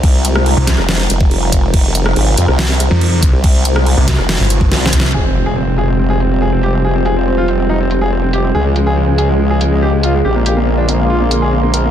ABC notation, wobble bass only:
X:1
M:4/4
L:1/16
Q:1/4=141
K:Fm
V:1 name="Wobble bass" clef=bass
C,,4- C,, z2 F,,,3 F,,,2 F,,,4 | F,,,4 A,,,2 F,, C,,4 z4 C,,- | C,,4- C,, z2 F,,,2 z3 C,,2 z2 | F,,,16- |
F,,,16 | D,,16 | B,,,16 |]